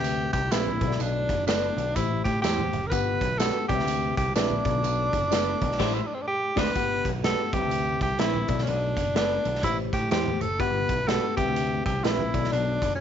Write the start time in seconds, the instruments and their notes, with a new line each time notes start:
Already playing: picked electric bass D2, tine electric piano C3 C4 B4 E5, tenor saxophone G4
0.04 closed hi-hat, tambourine
0.33 picked electric bass C2, tenor saxophone G4, kick, closed hi-hat, muted conga
0.51 picked electric bass A#1, tine electric piano C4 B4 E5, clean electric guitar E4 G4 B4, tenor saxophone E4, snare, closed hi-hat, tambourine
0.67 high conga, low conga
0.81 picked electric bass B1, tine electric piano B2 B3 A4 C5, kick, closed hi-hat, muted conga, high conga, low conga
0.88 tine electric piano D5, snare
0.95 tenor saxophone E4, muted conga
1.00 picked electric bass B1, tenor saxophone D4, closed hi-hat, tambourine
1.29 picked electric bass F#1, kick, closed hi-hat, muted conga
1.38 high conga
1.47 tine electric piano B3 A4 D5, clean electric guitar D4 A4 B4, tenor saxophone D4, snare, closed hi-hat, tambourine, muted conga
1.76 picked electric bass B1, closed hi-hat, muted conga, high conga
1.96 picked electric bass A1, tine electric piano A2 A3 G4 C5, tenor saxophone E4, kick, closed hi-hat, tambourine
2.24 picked electric bass A2, tenor saxophone G4, kick, closed hi-hat, muted conga
2.42 picked electric bass E2, tine electric piano A3 G4 C5, clean electric guitar E4 G4 C5, tenor saxophone G4, snare, closed hi-hat, tambourine, muted conga
2.59 high conga, low conga
2.73 picked electric bass F#1, closed hi-hat, high conga, low conga
2.87 tenor saxophone A#4 B4
2.92 picked electric bass G1, tine electric piano G2 B3 G4 F#5, kick, closed hi-hat, tambourine
3.21 picked electric bass B1, kick, closed hi-hat
3.31 high conga
3.38 tine electric piano B3 G4 F#5, clean electric guitar D4 F#4 B4, tenor saxophone A4, snare, closed hi-hat, tambourine
3.68 picked electric bass C2, tine electric piano C3 C4 B4 D5, tenor saxophone G4, kick, closed hi-hat, muted conga, high conga
3.75 picked electric bass D2, tine electric piano E5
3.79 snare
3.87 closed hi-hat, tambourine
4.17 picked electric bass C2, tenor saxophone G4, kick, closed hi-hat
4.36 picked electric bass A#1, tine electric piano C4 B4 E5, tenor saxophone D4, clean electric guitar E4 G4 B4, snare, closed hi-hat, tambourine
4.50 high conga, low conga
4.65 picked electric bass B1, tine electric piano B2 B3 A4 D5, kick, closed hi-hat, muted conga, high conga, low conga
4.83 picked electric bass B1, closed hi-hat, tambourine, muted conga
5.12 picked electric bass F#1, kick, closed hi-hat, muted conga
5.22 high conga
5.31 tine electric piano B3 A4 D5, clean electric guitar D4 A4 B4, snare, closed hi-hat, tambourine
5.61 picked electric bass B1, kick, closed hi-hat, high conga
5.71 snare
5.79 picked electric bass A1, tine electric piano A2 A3 G4 C5, clean electric guitar E4 G4 C5, kick, snare, crash
5.94 tenor saxophone E4
6.07 tenor saxophone D4
6.14 tenor saxophone C4
6.22 tenor saxophone D4
6.28 tenor saxophone G4
6.56 picked electric bass D2, tine electric piano D3 C4 F#4 D5, clean electric guitar A3 C4 D4 F#4 C5, tenor saxophone B4, kick, snare, crash
6.76 picked electric bass G1, tine electric piano G2 B3 G4 F#5, kick, closed hi-hat
7.05 picked electric bass B1, kick, closed hi-hat, muted conga
7.14 high conga
7.24 tine electric piano B3 G4 F#5, clean electric guitar D4 F#4 B4, tenor saxophone A4, snare, closed hi-hat
7.53 picked electric bass C2, tine electric piano C3 C4 B4 D#5, tenor saxophone G4, kick, closed hi-hat, high conga
7.60 picked electric bass D2, tine electric piano E5
7.71 closed hi-hat
8.01 picked electric bass C2, tenor saxophone G4, kick, closed hi-hat, muted conga
8.19 picked electric bass A#1, clean electric guitar C4 E4 B4, tine electric piano C4 B4 E5, tenor saxophone E4, snare, closed hi-hat, muted conga
8.34 high conga, low conga
8.48 picked electric bass B1, tine electric piano B2 B3 A4 D5, kick, closed hi-hat, muted conga, high conga, low conga
8.58 snare
8.63 tenor saxophone C#4
8.67 picked electric bass B1, tenor saxophone D4, closed hi-hat
8.97 picked electric bass F#1, kick, closed hi-hat
9.06 high conga
9.15 tine electric piano B3 A4 D5, clean electric guitar D4 A4 B4, tenor saxophone D4, snare, closed hi-hat
9.45 picked electric bass B1, closed hi-hat, muted conga, high conga
9.55 snare
9.63 picked electric bass A1, tine electric piano A2 A3 G4 C5, tenor saxophone E4, kick, closed hi-hat
9.93 picked electric bass A2, tenor saxophone G4, kick, closed hi-hat
10.11 picked electric bass E2, tine electric piano A3 G4 C5, clean electric guitar E4 G4 C5, tenor saxophone G4, snare, closed hi-hat, muted conga
10.26 high conga, low conga
10.41 picked electric bass F#1, tenor saxophone A4, closed hi-hat, high conga, low conga
10.60 picked electric bass G1, tine electric piano G2 B3 G4 F#5, tenor saxophone B4, kick, closed hi-hat
10.89 picked electric bass B1, kick, closed hi-hat
10.98 high conga
11.07 tine electric piano B3 G4 F#5, clean electric guitar D4 F#4 B4, tenor saxophone A4, snare, closed hi-hat
11.37 picked electric bass C2, tine electric piano C3 C4 B4 E5, tenor saxophone G4, kick, closed hi-hat, muted conga, high conga
11.47 picked electric bass D2
11.56 closed hi-hat
11.86 picked electric bass C2, tenor saxophone G4, kick, closed hi-hat, muted conga
12.04 picked electric bass A#1, tine electric piano C4 B4 E5, clean electric guitar E4 G4 B4, tenor saxophone E4, snare, closed hi-hat, muted conga
12.19 high conga, low conga
12.34 picked electric bass B1, tine electric piano B2 B3 A4 D5, kick, closed hi-hat, high conga, low conga
12.44 snare
12.52 picked electric bass B1, tenor saxophone D4, closed hi-hat, muted conga
12.81 picked electric bass F#1, kick, closed hi-hat, muted conga
12.91 high conga
12.95 tenor saxophone C#4